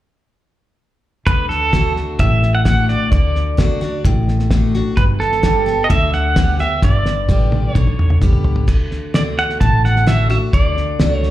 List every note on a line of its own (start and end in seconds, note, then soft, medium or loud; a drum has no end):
1.26 2.01 D2 medium
1.26 1.72 D3 medium
1.26 1.48 B4 medium
1.26 kick medium
1.26 snare soft
1.49 1.92 A4 medium
1.49 snare soft
1.73 2.17 D3 medium
1.73 2.18 A3 medium
1.73 2.18 D4 soft
1.73 2.18 F#4 medium
1.73 kick medium
1.73 snare medium
1.73 hi-hat pedal medium
1.96 snare soft
2.19 2.94 A1 medium
2.19 3.07 A2 medium
2.19 2.52 E5 medium
2.19 kick medium
2.19 snare soft
2.42 snare soft
2.55 2.65 F#5 medium
2.65 3.09 D3 soft
2.65 3.10 A3 soft
2.65 3.10 D4 soft
2.65 3.11 F#4 soft
2.65 2.90 F#5 loud
2.65 kick medium
2.65 snare medium
2.65 hi-hat pedal medium
2.88 3.11 D5 medium
2.88 snare soft
3.12 3.86 D2 medium
3.12 3.56 D3 medium
3.12 4.01 D5 medium
3.12 kick medium
3.12 snare soft
3.35 snare soft
3.57 3.80 D3 medium
3.57 3.80 A3 soft
3.57 3.81 D4 medium
3.57 3.80 F#4 soft
3.57 kick medium
3.57 snare medium
3.57 hi-hat pedal medium
3.81 4.05 D4 soft
3.81 4.03 F#4 soft
3.81 snare soft
4.04 4.79 A1 medium
4.04 4.93 A2 medium
4.04 kick medium
4.04 snare soft
4.28 snare soft
4.39 snare soft
4.51 4.73 D3 soft
4.51 4.74 A3 soft
4.51 4.74 D4 medium
4.51 4.73 F#4 medium
4.51 kick medium
4.51 snare medium
4.51 hi-hat pedal medium
4.74 4.98 D4 soft
4.74 4.97 F#4 soft
4.74 snare soft
4.97 5.72 G1 medium
4.97 5.85 G2 medium
4.97 5.03 B4 medium
4.97 kick loud
4.97 snare soft
5.20 5.86 A4 medium
5.20 snare soft
5.32 snare soft
5.43 5.65 D3 medium
5.43 5.66 G3 medium
5.43 5.66 B3 medium
5.43 5.65 G4 medium
5.43 kick medium
5.43 snare medium
5.43 hi-hat pedal medium
5.66 5.90 B3 soft
5.66 5.89 G4 medium
5.66 snare soft
5.84 5.90 D#5 medium
5.89 6.64 D2 medium
5.89 6.35 D3 medium
5.89 6.12 E5 loud
5.89 kick medium
5.89 snare soft
6.13 6.60 F#5 medium
6.13 snare soft
6.36 6.58 D3 soft
6.36 6.59 G3 soft
6.36 6.59 B3 medium
6.36 6.58 G4 soft
6.36 kick medium
6.36 snare medium
6.36 hi-hat pedal medium
6.59 6.83 B3 soft
6.59 6.82 G4 soft
6.59 6.84 E5 medium
6.59 snare soft
6.82 7.20 G1 medium
6.82 7.71 G2 medium
6.82 7.71 D5 medium
6.82 kick medium
6.82 snare soft
7.06 snare medium
7.29 7.68 A1 medium
7.29 7.73 D3 soft
7.29 7.73 G3 soft
7.29 7.74 B3 medium
7.29 7.74 G4 medium
7.29 kick medium
7.29 hi-hat pedal medium
7.29 high tom medium
7.52 high tom medium
7.71 8.14 B1 medium
7.71 8.19 C#5 medium
7.71 kick medium
7.71 mid tom medium
7.76 8.64 D3 medium
7.87 mid tom soft
7.99 mid tom medium
8.10 mid tom medium
8.21 8.61 C#2 medium
8.21 8.66 G3 soft
8.21 8.66 B3 soft
8.21 8.66 G4 soft
8.21 kick medium
8.21 hi-hat pedal medium
8.21 mid tom medium
8.33 floor tom medium
8.44 floor tom medium
8.56 floor tom medium
8.67 9.43 D2 medium
8.67 9.13 D3 medium
8.67 kick medium
8.67 snare soft
8.67 crash medium
8.91 snare soft
9.14 9.58 D3 medium
9.14 9.59 A3 medium
9.14 9.59 D4 medium
9.14 9.60 F#4 medium
9.14 9.21 D5 medium
9.14 snare loud
9.14 hi-hat pedal medium
9.38 9.60 F#5 medium
9.38 snare soft
9.49 snare soft
9.60 10.36 A1 medium
9.60 10.49 A2 medium
9.60 9.84 A5 medium
9.60 kick medium
9.60 snare soft
9.85 10.08 F#5 medium
9.85 snare soft
9.96 snare soft
10.07 10.29 D3 medium
10.07 10.29 A3 soft
10.07 10.30 D4 medium
10.07 10.28 F#4 medium
10.07 10.29 E5 medium
10.07 snare medium
10.07 hi-hat pedal medium
10.30 10.53 D4 soft
10.30 10.52 F#4 medium
10.30 10.37 E5 medium
10.30 snare soft
10.53 10.91 D2 medium
10.53 11.31 D3 medium
10.53 11.14 D5 medium
10.53 kick loud
10.53 snare soft
10.77 snare soft
10.99 11.31 C#2 medium
10.99 11.31 A3 medium
10.99 11.31 D4 medium
10.99 11.31 F#4 medium
10.99 snare loud
10.99 hi-hat pedal medium
11.14 11.31 C#5 medium
11.23 snare soft